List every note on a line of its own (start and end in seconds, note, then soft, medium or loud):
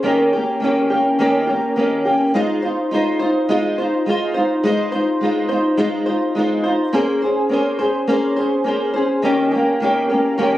0.03 0.32 D#3 medium
0.03 0.32 A#3 medium
0.03 0.33 C#4 medium
0.03 0.32 G4 medium
0.33 0.62 C#4 soft
0.33 0.61 G4 medium
0.37 0.61 A#3 soft
0.60 0.89 D#3 medium
0.60 0.90 A#3 medium
0.60 0.91 C#4 medium
0.64 0.89 G4 medium
0.90 1.19 A#3 soft
0.90 1.19 C#4 soft
0.90 1.19 G4 medium
1.19 1.47 D#3 medium
1.19 1.48 A#3 medium
1.19 1.48 C#4 medium
1.19 1.46 G4 medium
1.47 1.77 C#4 soft
1.47 1.76 G4 soft
1.51 1.76 A#3 soft
1.76 2.05 D#3 medium
1.76 2.06 A#3 medium
1.76 2.06 C#4 medium
1.76 2.04 G4 medium
2.05 2.34 A#3 soft
2.05 2.35 C#4 soft
2.05 2.34 G4 soft
2.34 2.63 G#3 medium
2.34 2.63 D#4 medium
2.34 2.64 F4 medium
2.34 2.61 C5 medium
2.62 2.91 D#4 soft
2.62 2.92 F4 medium
2.62 2.91 C5 soft
2.91 3.20 G#3 medium
2.91 3.21 D#4 medium
2.91 3.21 F4 medium
2.91 3.18 C5 medium
3.19 3.50 F4 soft
3.19 3.48 C5 medium
3.24 3.49 D#4 soft
3.49 3.78 G#3 medium
3.49 3.78 D#4 medium
3.49 3.79 F4 medium
3.49 3.77 C5 medium
3.78 4.06 D#4 soft
3.78 4.08 F4 soft
3.78 4.07 C5 medium
4.06 4.35 G#3 medium
4.06 4.36 D#4 medium
4.06 4.35 F4 medium
4.10 4.33 C5 medium
4.34 4.64 F4 medium
4.34 4.63 C5 medium
4.38 4.64 D#4 soft
4.64 4.92 G#3 medium
4.64 4.93 D#4 medium
4.64 4.93 F4 medium
4.64 4.91 C5 medium
4.92 5.21 D#4 soft
4.92 5.22 F4 soft
4.92 5.21 C5 medium
5.21 5.50 G#3 medium
5.21 5.51 D#4 medium
5.21 5.50 F4 medium
5.25 5.47 C5 medium
5.49 5.77 D#4 soft
5.49 5.78 F4 soft
5.49 5.78 C5 medium
5.77 6.07 G#3 medium
5.77 6.07 D#4 medium
5.77 6.07 F4 medium
5.77 6.05 C5 medium
6.06 6.37 F4 medium
6.06 6.35 C5 medium
6.10 6.35 D#4 soft
6.35 6.64 G#3 medium
6.35 6.65 D#4 medium
6.35 6.64 F4 medium
6.35 6.62 C5 medium
6.64 6.94 F4 soft
6.64 6.93 C5 medium
6.68 6.93 D#4 soft
6.93 7.22 A#3 medium
6.93 7.22 C#4 medium
6.93 7.23 G#4 medium
6.93 7.21 C5 medium
7.22 7.50 C#4 soft
7.22 7.51 G#4 medium
7.22 7.51 C5 medium
7.49 7.79 A#3 medium
7.49 7.80 C#4 medium
7.49 7.80 G#4 medium
7.53 7.78 C5 medium
7.79 8.08 C#4 soft
7.79 8.08 G#4 medium
7.79 8.08 C5 medium
8.07 8.37 A#3 medium
8.07 8.37 C#4 medium
8.07 8.37 G#4 medium
8.07 8.35 C5 medium
8.36 8.64 C#4 soft
8.36 8.66 G#4 medium
8.36 8.65 C5 medium
8.64 8.94 A#3 medium
8.64 8.95 C#4 medium
8.64 8.95 G#4 medium
8.68 8.92 C5 medium
8.94 9.23 C#4 soft
8.94 9.24 G#4 soft
8.94 9.23 C5 medium
9.22 9.52 D#3 medium
9.22 9.52 A#3 medium
9.22 9.52 C#4 medium
9.22 9.50 G4 medium
9.51 9.81 A#3 soft
9.51 9.81 C#4 soft
9.51 9.80 G4 medium
9.80 10.09 D#3 medium
9.80 10.10 A#3 medium
9.80 10.10 C#4 medium
9.84 10.08 G4 medium
10.09 10.38 C#4 medium
10.09 10.38 G4 medium
10.14 10.37 A#3 soft
10.38 10.58 D#3 medium
10.38 10.58 A#3 medium
10.38 10.58 C#4 medium
10.38 10.58 G4 medium